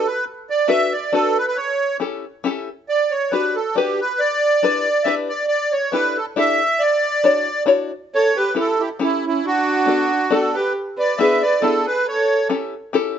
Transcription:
0.07 accordion B4
0.50 accordion D5
0.68 five-string banjo D4 F#4 A4 B4, accordion E5
0.93 accordion D5
1.13 five-string banjo D4 F#4 A4 B4, accordion A4
1.38 accordion B4
1.47 accordion B4
1.57 accordion C#5
2.00 five-string banjo C#4 E4 G4 A4
2.44 five-string banjo C#4 E4 G4 A4
2.89 accordion D5
3.11 accordion C#5
3.31 five-string banjo D4 F#4 G4 B4, accordion B4
3.55 accordion A4
3.75 five-string banjo D4 F#4 G4 B4, accordion G4
4.01 accordion B4
4.20 accordion D5
4.63 five-string banjo D4 E4 G4 B4
5.04 five-string banjo D4 E4 G4 B4, accordion E5
5.29 accordion D5
5.48 accordion D5
5.72 accordion C#5
5.92 five-string banjo D4 E4 G4 A4, accordion B4
6.17 accordion A4
6.36 five-string banjo D4 E4 G4 A4, accordion E5
6.79 accordion D5
7.24 five-string banjo D4 E4 F#4 C#5
7.66 five-string banjo D4 E4 F#4 C#5
8.14 violin A4, accordion C#5
8.37 violin G4, accordion B4
8.55 five-string banjo C#4 E4 G4 A4, violin E4
8.59 accordion A4
8.80 violin E4, accordion G4
8.99 five-string banjo C#4 E4 G4 A4, violin C#4, accordion E4
9.26 violin C#4, accordion E4
9.46 violin D4, accordion F#4
9.86 five-string banjo B3 D4 F#4 A4
10.30 five-string banjo B3 D4 F#4 A4, violin F#4, accordion A4
10.55 violin G4, accordion B4
10.97 violin B4, accordion D5
11.18 five-string banjo B3 D4 E4 G#4, violin B4, accordion E5
11.42 violin B4, accordion D5
11.62 five-string banjo B3 D4 E4 G#4, violin E4, accordion A4
11.87 violin G#4, accordion B4
12.08 violin A4, accordion C#5
12.49 five-string banjo C#4 E4 G4 A4
12.93 five-string banjo C#4 E4 G4 A4

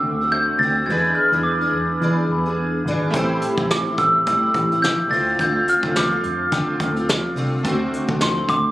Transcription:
Already playing: steel-string acoustic guitar D3 A3 C4 F#4, synth keys A3 D4 F#4 C5, glockenspiel E6
0.03 picked electric bass D2
0.21 steel-string acoustic guitar A3 C4 F#4
0.32 synth keys A3 D4 F#4 C5, glockenspiel G6
0.59 picked electric bass D2, steel-string acoustic guitar D3 C4, glockenspiel A6
0.63 steel-string acoustic guitar A3 F#4
0.86 picked electric bass E2, steel-string acoustic guitar E3, synth keys G#3 D4, glockenspiel G#6
0.90 steel-string acoustic guitar B3 D4 G#4, synth keys E4 B4
1.15 glockenspiel F6
1.32 picked electric bass E2, steel-string acoustic guitar E3 B3 D4 G#4
1.43 glockenspiel D6
1.61 steel-string acoustic guitar B3 D4 G#4
1.72 picked electric bass E2
2.01 picked electric bass E3, steel-string acoustic guitar E3 B3 D4 G#4
2.29 picked electric bass E2
2.46 steel-string acoustic guitar B3 D4 G#4
2.85 picked electric bass G#1, steel-string acoustic guitar E3 B3 D4 G#4
3.10 picked electric bass A1, synth keys A3 E4 G4, kick, closed hi-hat
3.15 steel-string acoustic guitar A2 E3 G3 C4 E4, synth keys C5
3.42 closed hi-hat
3.58 picked electric bass A1, steel-string acoustic guitar A2 E3 G3 C4 E4, kick
3.71 glockenspiel D6, snare, closed hi-hat
3.86 steel-string acoustic guitar G3 C4 E4
3.98 picked electric bass A1, glockenspiel E6, kick, closed hi-hat
4.26 steel-string acoustic guitar A2 E3 G3 C4 E4, picked electric bass A2, kick, closed hi-hat
4.54 picked electric bass A1, kick, closed hi-hat
4.72 steel-string acoustic guitar G3 C4 E4, closed hi-hat
4.82 glockenspiel G6, snare, closed hi-hat
5.08 picked electric bass D2, synth keys A3 D4 F4, glockenspiel A6
5.12 steel-string acoustic guitar D3 A3 C4 F4, synth keys C5, open hi-hat
5.39 picked electric bass D2, steel-string acoustic guitar D3 A3 C4 F4, glockenspiel G6, kick, closed hi-hat
5.68 glockenspiel F6, closed hi-hat
5.83 picked electric bass D2, steel-string acoustic guitar D3 A3 C4 F4, kick
5.96 glockenspiel D6, snare, closed hi-hat
6.11 steel-string acoustic guitar A3 C4 F4
6.23 picked electric bass F2, closed hi-hat
6.51 steel-string acoustic guitar D3 A3 C4 F4, picked electric bass D3, kick, snare, closed hi-hat
6.80 picked electric bass D2, kick, closed hi-hat
6.96 steel-string acoustic guitar A3 C4 F4, closed hi-hat
7.09 snare, closed hi-hat
7.35 picked electric bass C2, steel-string acoustic guitar D3 A3 C4 F4, open hi-hat
7.63 picked electric bass D2, steel-string acoustic guitar D3 A3 C4 F#4, synth keys A3 D4 F#4, kick, closed hi-hat
7.68 synth keys C5
7.93 closed hi-hat
8.07 picked electric bass D2, steel-string acoustic guitar D3 A3 C4 F#4, kick
8.21 glockenspiel C6, snare, closed hi-hat
8.35 steel-string acoustic guitar A3 C4 F#4
8.48 picked electric bass D2, glockenspiel D6, kick, closed hi-hat

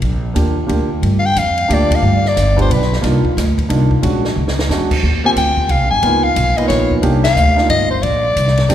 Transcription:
0.02 upright bass A#1, kick, ride
0.34 upright bass D#2, grand piano A#3 D4 F4 G4, kick, hi-hat pedal, ride
0.67 upright bass D2, grand piano A#3 D4 F4 G4, kick, ride
1.02 upright bass G2, kick, ride
1.19 soprano saxophone F5
1.26 soprano saxophone G5
1.36 upright bass F2, soprano saxophone F5, kick, hi-hat pedal, ride
1.58 ride
1.68 upright bass D2, grand piano A#3 D4 F4 G4, kick, ride
1.74 soprano saxophone D5
1.91 kick, ride
1.95 soprano saxophone F5
2.02 upright bass G2
2.25 soprano saxophone D5, snare
2.36 upright bass G1, kick, snare, hi-hat pedal, ride
2.56 grand piano B3 D4 F4 G4, kick, ride
2.61 soprano saxophone C5
2.70 upright bass B1, soprano saxophone B4, kick, ride
2.82 snare
2.93 snare
3.02 upright bass C2, grand piano A#3 D4 D#4 F4, kick, snare, ride
3.24 muted upright bass stroke, kick
3.37 upright bass D2, kick, snare, hi-hat pedal, ride
3.58 kick, ride
3.69 upright bass C2, grand piano A#3 D4 D#4 F4, kick, ride
3.91 kick
4.02 upright bass A#1, grand piano G#3 C#4 D4 F#4, kick, ride
4.25 snare
4.36 upright bass C#2
4.48 snare
4.59 snare
4.69 upright bass E2, grand piano G#3 C#4 D4 F#4, snare, hi-hat pedal
4.91 kick, crash
5.03 upright bass D#2, kick
5.24 grand piano A#3 C4 F4 G4, soprano saxophone G#5
5.36 upright bass D2, soprano saxophone G5, kick, hi-hat pedal, ride
5.57 kick
5.69 upright bass C2, soprano saxophone F5, kick, ride
5.81 upright bass A#1
5.91 upright bass G1, soprano saxophone G#5
6.03 upright bass C#2, grand piano A#3 B3 D#4 F4, kick, ride
6.24 soprano saxophone F5
6.36 upright bass B1, kick, hi-hat pedal, ride
6.57 grand piano A#3 B3 D#4 F4, soprano saxophone D#5, muted upright bass stroke, ride
6.68 upright bass A#1, soprano saxophone C#5, kick, snare, ride
6.91 kick
7.02 upright bass C2, grand piano A#3 D4 D#4 G4, kick, ride
7.24 soprano saxophone F5, snare, ride
7.36 upright bass D2, hi-hat pedal
7.56 grand piano A#3 D4 D#4 F4, snare
7.69 upright bass G1, soprano saxophone D#5, kick, ride
7.91 soprano saxophone C5
8.03 upright bass A#1, soprano saxophone D5, kick, ride
8.36 upright bass C2, kick, hi-hat pedal, ride
8.47 snare
8.57 snare, ride
8.69 upright bass D2, grand piano G#3 C4 D4 G4, kick, snare, hi-hat pedal, ride

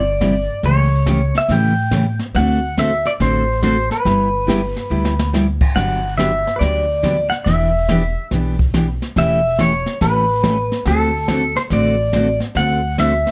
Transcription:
Already playing: upright bass G1, pedal steel guitar D5
0.21 steel-string acoustic guitar C3 G3 B3 E4 G4, kick, snare, hi-hat pedal
0.63 upright bass C#2, steel-string acoustic guitar C#3 E3 A3 C#4 G4, pedal steel guitar C#5, brush sweep, kick, snare
1.06 steel-string acoustic guitar C#3 E3 A3 C#4 G4, kick, snare, hi-hat pedal
1.35 pedal steel guitar E5, snare
1.49 upright bass A2, steel-string acoustic guitar C#3 E3 A3 C#4 G4, pedal steel guitar G5, brush sweep, kick, snare
1.91 steel-string acoustic guitar C#3 E3 A3 C#4 G4, kick, snare, hi-hat pedal
2.19 snare
2.34 upright bass D2, steel-string acoustic guitar D3 A3 C4 F#4 A4, pedal steel guitar F#5, brush sweep, kick, snare
2.77 steel-string acoustic guitar D3 A3 C4 F#4 A4, pedal steel guitar E5, kick, snare, hi-hat pedal
3.05 pedal steel guitar D5, snare
3.20 upright bass A1, steel-string acoustic guitar D3 A3 C4 F#4 A4, pedal steel guitar C5, brush sweep, kick, snare
3.63 steel-string acoustic guitar D3 A3 C4 F#4 A4, pedal steel guitar C5, kick, snare, hi-hat pedal
3.91 pedal steel guitar B4, snare
4.05 upright bass G1, steel-string acoustic guitar G3 B3 E4 G4, brush sweep, kick, snare
4.47 steel-string acoustic guitar G3 B3 E4 G4, kick, snare, hi-hat pedal
4.76 snare
4.90 upright bass D2, steel-string acoustic guitar G3 B3 E4 G4
5.05 snare
5.19 snare
5.33 steel-string acoustic guitar G3 B3 E4 G4, snare, hi-hat pedal
5.61 kick, crash
5.76 upright bass G1, steel-string acoustic guitar D3 F#3 B3 D4 G4, pedal steel guitar F#5, brush sweep, kick, snare
6.17 steel-string acoustic guitar D3 F#3 B3 D4 G4, pedal steel guitar E5, kick, snare, hi-hat pedal
6.47 snare
6.56 pedal steel guitar B4 D5
6.60 upright bass D2, steel-string acoustic guitar D3 F#3 B3 D4 G4, brush sweep, kick, snare
7.03 steel-string acoustic guitar D3 F#3 B3 D4 G4, kick, snare, hi-hat pedal
7.30 pedal steel guitar F#5, snare
7.44 upright bass E1, steel-string acoustic guitar E3 B3 D4 G4, pedal steel guitar E5, brush sweep, kick, snare
7.89 steel-string acoustic guitar E3 B3 D4 G4, kick, snare, hi-hat pedal
8.31 upright bass B1, steel-string acoustic guitar E3 B3 D4 G4, brush sweep, kick, snare
8.59 kick
8.74 steel-string acoustic guitar E3 B3 D4 G4, kick, snare, hi-hat pedal
9.02 snare
9.16 upright bass E1, steel-string acoustic guitar E3 A3 C#4 G4, pedal steel guitar E5, brush sweep, kick, snare
9.59 steel-string acoustic guitar E3 A3 C#4 G4, pedal steel guitar C#5, kick, snare, hi-hat pedal
9.86 snare
10.01 upright bass A1, steel-string acoustic guitar E3 A3 C#4 G4, pedal steel guitar B4, brush sweep, kick, snare
10.43 steel-string acoustic guitar E3 A3 C#4 G4, kick, snare, hi-hat pedal
10.72 snare
10.85 upright bass D2, steel-string acoustic guitar D3 A3 C4 F#4 A4, pedal steel guitar A4, brush sweep, kick, snare
11.28 steel-string acoustic guitar D3 A3 C4 F#4 A4, kick, snare, hi-hat pedal
11.56 pedal steel guitar C5, snare
11.70 upright bass A1, steel-string acoustic guitar D3 A3 C4 F#4 A4, pedal steel guitar D5, brush sweep, kick, snare
12.13 steel-string acoustic guitar D3 A3 C4 F#4 A4, kick, snare, hi-hat pedal
12.40 snare
12.55 upright bass D2, steel-string acoustic guitar D3 A3 C4 F#4 A4, pedal steel guitar F#5, brush sweep, kick, snare
12.98 steel-string acoustic guitar D3 A3 C4 F#4 A4, pedal steel guitar E5, kick, snare, hi-hat pedal
13.27 snare

